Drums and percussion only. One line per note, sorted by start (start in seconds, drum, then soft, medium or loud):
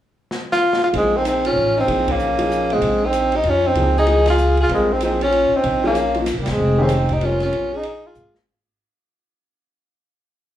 0.31 snare medium
0.53 snare medium
0.73 snare medium
0.94 ride medium
1.25 hi-hat pedal medium
1.25 ride medium
1.45 ride medium
1.88 ride medium
2.08 kick medium
2.08 ride medium
2.19 hi-hat pedal soft
2.39 ride medium
2.51 hi-hat pedal medium
2.70 ride soft
2.82 ride medium
3.13 hi-hat pedal medium
3.13 ride medium
3.32 ride soft
3.44 ride medium
3.75 ride medium
4.07 ride medium
4.26 snare medium
4.26 ride medium
4.38 hi-hat pedal soft
4.57 ride soft
4.69 ride medium
5.01 hi-hat pedal soft
5.01 ride medium
5.21 ride soft
5.32 ride medium
5.64 ride medium
5.95 hi-hat pedal soft
5.95 ride medium
6.14 ride soft
6.26 snare soft
6.26 hi-hat pedal medium
6.26 ride medium
6.46 snare medium
6.46 ride medium
6.89 hi-hat pedal medium
6.89 ride medium
7.09 kick medium
7.09 ride soft
7.21 ride medium
7.40 snare soft
7.40 ride soft
7.53 ride medium
7.83 ride medium
8.15 hi-hat pedal medium
8.35 snare medium